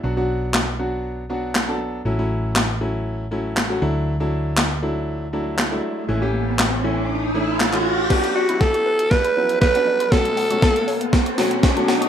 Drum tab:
CC |----------------|----------------|----------------|----------------|
HH |----------------|----------------|----------------|----------------|
CP |----x-------x---|----x-------x---|----x-------x---|----x-------xx--|
SD |----o-------o---|----o-------o---|----o-------o---|----o-------o---|
BD |----------------|----------------|----------------|----------------|

CC |x---------------|----------------|
HH |-x-x-x-x-x-x-x-x|-xox-xox-xox-xox|
CP |----------------|----------------|
SD |o---o---o---o---|o---o---o-o-o-o-|
BD |o---o---o---o---|o---o---o---o---|